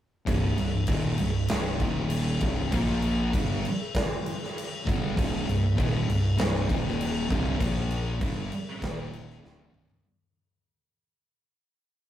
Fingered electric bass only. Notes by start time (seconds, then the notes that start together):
0.27 C1
0.58 C1
0.88 D#1
1.18 C1
1.50 C1
1.80 D#1
2.41 C1
2.72 A#1
3.34 G1
4.87 G1
5.17 C1
5.47 C1
5.79 D#1
6.08 C1
6.38 C1
6.69 D#1
7.31 C1
7.61 A#1
8.21 G1
8.82 D#1
9.43 D1
9.72 C1